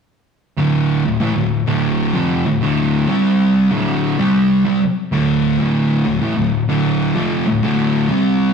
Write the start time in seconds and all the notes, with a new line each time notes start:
0.58 D2 A2 D3
1.05 D2 A2
1.20 A2 E3
1.34 D2 A2
1.67 D2 A2 D3
2.14 F2 C3 F3
2.47 D2 A2
2.62 D2 A2 D3
3.08 C3 G3 C4
3.72 D2 A2 D3
4.18 C3 G3 C4
4.65 C3 G3
5.12 D2 A2 D3
5.58 D2 A2 D3
6.05 D2 A2
6.19 A2 E3
6.35 D2 A2
6.68 D2 A2 D3
7.14 F2 C3 F3
7.46 D2 A2
7.62 D2 A2 D3
8.09 C3 G3 C4